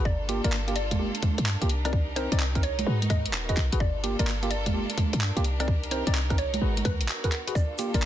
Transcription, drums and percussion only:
0.05 kick loud
0.29 open hi-hat loud
0.44 closed hi-hat medium
0.52 clap loud
0.68 closed hi-hat soft
0.76 open hi-hat loud
0.91 kick medium
0.91 closed hi-hat medium
0.91 high conga medium
1.15 closed hi-hat medium
1.22 kick loud
1.22 open hi-hat loud
1.22 high conga medium
1.38 closed hi-hat medium
1.46 clap loud
1.62 closed hi-hat medium
1.69 open hi-hat loud
1.85 cross-stick medium
1.85 closed hi-hat medium
1.93 kick loud
2.16 open hi-hat loud
2.32 closed hi-hat medium
2.40 clap loud
2.55 kick loud
2.55 closed hi-hat soft
2.63 open hi-hat loud
2.79 closed hi-hat medium
2.79 high conga medium
3.02 closed hi-hat medium
3.02 high conga medium
3.10 kick loud
3.10 cross-stick medium
3.10 open hi-hat loud
3.26 closed hi-hat medium
3.33 clap loud
3.33 open hi-hat medium
3.49 kick medium
3.49 closed hi-hat medium
3.57 clap medium
3.57 open hi-hat loud
3.72 closed hi-hat medium
3.80 kick loud
4.04 open hi-hat loud
4.19 closed hi-hat medium
4.27 clap loud
4.43 closed hi-hat soft
4.51 open hi-hat loud
4.66 kick medium
4.66 closed hi-hat medium
4.66 high conga medium
4.90 closed hi-hat medium
4.98 kick loud
4.98 open hi-hat loud
4.98 high conga medium
5.13 closed hi-hat medium
5.21 clap loud
5.37 closed hi-hat medium
5.44 open hi-hat loud
5.60 cross-stick medium
5.60 closed hi-hat medium
5.68 kick loud
5.83 closed hi-hat soft
5.91 open hi-hat loud
6.07 closed hi-hat medium
6.15 clap loud
6.30 kick loud
6.30 cross-stick medium
6.30 closed hi-hat soft
6.38 open hi-hat loud
6.54 closed hi-hat medium
6.54 high conga medium
6.77 closed hi-hat medium
6.77 high conga medium
6.85 kick loud
6.85 cross-stick medium
6.85 open hi-hat loud
7.01 closed hi-hat medium
7.08 clap loud
7.08 open hi-hat medium
7.24 kick medium
7.24 closed hi-hat medium
7.32 clap medium
7.32 open hi-hat loud
7.47 closed hi-hat medium
7.55 kick loud
7.55 shaker medium
7.78 open hi-hat loud
7.78 shaker loud
7.94 closed hi-hat medium
7.94 shaker soft
8.02 clap loud
8.02 shaker soft

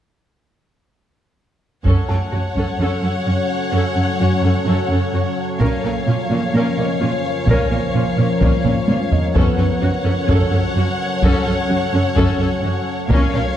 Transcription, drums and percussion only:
1.85 taiko medium
2.56 taiko soft
5.60 taiko soft
7.47 taiko medium
8.41 taiko medium
8.64 taiko low-mid medium
8.88 taiko high medium
9.12 taiko low medium
9.35 taiko medium
10.29 taiko medium
11.23 taiko medium
12.16 taiko medium
13.10 taiko medium

